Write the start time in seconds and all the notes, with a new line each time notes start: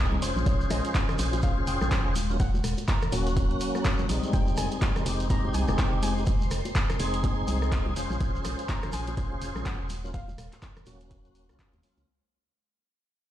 Already playing: G#3 C4 D#4 G#4, downlifter
0.12 C2, high bongo, high conga
0.22 F1 C#4 F4 G#4 C5, open hi-hat, shekere
0.36 A#1, high bongo, high conga, shekere
0.46 A#1 C#5, kick, closed hi-hat, shekere
0.61 shekere
0.70 A#1 D#5, cross-stick, open hi-hat, high bongo, high conga, shekere
0.85 closed hi-hat, shekere
0.95 kick, clap, closed hi-hat, high bongo, shekere
1.09 cross-stick, closed hi-hat, low conga, shekere
1.19 A#1 C#4 F4 G#4 C5, open hi-hat, shekere
1.33 closed hi-hat, high bongo, shekere
1.42 C#4 F4 G#4 C5 F5, kick, closed hi-hat, shekere
1.58 high bongo
1.67 F1 G5, open hi-hat, shekere
1.81 A#1, cross-stick, high conga, shekere
1.91 kick, clap, closed hi-hat, high bongo, shekere
2.06 D#1
2.16 open hi-hat, high bongo, high conga, shekere
2.30 F#3 A#3 C#4 F4, shekere
2.40 F#5, kick, closed hi-hat, shekere
2.54 high bongo, high conga, shekere
2.64 D#1, cross-stick, open hi-hat, high conga, shekere
2.78 closed hi-hat, high bongo, shekere
2.88 A#5, kick, clap, closed hi-hat, shekere
3.02 cross-stick, closed hi-hat, low conga, shekere
3.12 D#1 F#3 A#3 C#4 F#4, open hi-hat, high bongo, shekere
3.27 closed hi-hat, shekere
3.36 kick, closed hi-hat, high bongo, shekere
3.51 closed hi-hat
3.60 open hi-hat, shekere
3.75 cross-stick, high bongo, shekere
3.85 kick, clap, closed hi-hat, shekere
3.98 high bongo, high conga, shekere
4.09 A#1 G3 G#3 C4 D#4, open hi-hat, shekere
4.23 closed hi-hat, high conga, shekere
4.33 F1 C5 G5 C6, kick, closed hi-hat, shekere
4.47 high bongo, shekere
4.57 F1 G#5, cross-stick, open hi-hat, high conga, shekere
4.71 closed hi-hat, shekere
4.82 kick, clap, closed hi-hat, high bongo, shekere
4.96 cross-stick, closed hi-hat, low conga, shekere
5.06 F1 G#3 C4 D#4 G4, open hi-hat, high bongo, shekere
5.20 closed hi-hat, shekere
5.30 G#3 C4 D#4 G4 A#5, kick, closed hi-hat, shekere
5.45 high bongo
5.54 C2 G#5, open hi-hat, shekere
5.68 F1, cross-stick, high bongo, high conga, shekere
5.78 G5, kick, clap, closed hi-hat, shekere
5.93 F1
6.03 G#5, open hi-hat, high bongo, high conga, shekere
6.17 G#3 C4 D#4 G4, shekere
6.26 kick, closed hi-hat, high bongo, shekere
6.41 high conga, shekere
6.50 F1, cross-stick, open hi-hat, high conga, shekere
6.65 closed hi-hat, high bongo, shekere
6.75 kick, clap, closed hi-hat, shekere
6.90 cross-stick, closed hi-hat, high bongo, low conga, shekere
6.99 F1 G#3 C4 D#4 G#4, open hi-hat, shekere
7.13 closed hi-hat, shekere
7.24 kick, closed hi-hat, high bongo, shekere
7.47 C2, open hi-hat, high bongo, shekere
7.62 cross-stick, shekere
7.72 kick, clap, closed hi-hat, shekere
7.86 C2, high bongo, high conga
7.96 F1 C#4 F4 G#4 C5, open hi-hat, shekere
8.10 A#1, high bongo, high conga, shekere
8.20 A#1, kick, closed hi-hat, shekere
8.35 shekere
8.45 A#1, cross-stick, open hi-hat, high bongo, high conga, shekere
8.59 closed hi-hat, shekere
8.69 A#5, kick, clap, closed hi-hat, high bongo, shekere
8.83 cross-stick, closed hi-hat, low conga, shekere
8.93 A#1 C#4 F4 G#4 C5 G#5, open hi-hat, shekere
9.07 closed hi-hat, high bongo, shekere
9.17 C#4 F4 G#4 C5, kick, closed hi-hat, shekere
9.32 high bongo
9.41 F1, open hi-hat, shekere
9.56 A#1, cross-stick, high conga, shekere
9.65 F#5, kick, clap, closed hi-hat, high bongo, shekere
9.80 D#1
9.89 open hi-hat, high bongo, high conga, shekere
10.04 F#3 A#3 C#4 F4, shekere
10.14 F5, kick, closed hi-hat, shekere
10.28 high bongo, high conga, shekere
10.38 D#1, cross-stick, open hi-hat, high conga, shekere
10.53 clap, closed hi-hat, high bongo, shekere
10.62 kick, clap, closed hi-hat, shekere
10.76 cross-stick, closed hi-hat, low conga, shekere
10.86 D#1 F#3 A#3 C#4 F#4, open hi-hat, high bongo, shekere
11.00 closed hi-hat, shekere
11.11 kick, closed hi-hat, high bongo, shekere
11.25 closed hi-hat, shekere
11.35 open hi-hat, shekere
11.49 C#2 F#3 A#3 C#4 F4, cross-stick, closed hi-hat, high bongo, shekere
11.59 kick, clap, closed hi-hat, shekere
11.73 D#2, closed hi-hat, high bongo, high conga, shekere
11.83 F#3 A#3 C#4 F4, open hi-hat, shekere
11.97 C#2, closed hi-hat, high conga, shekere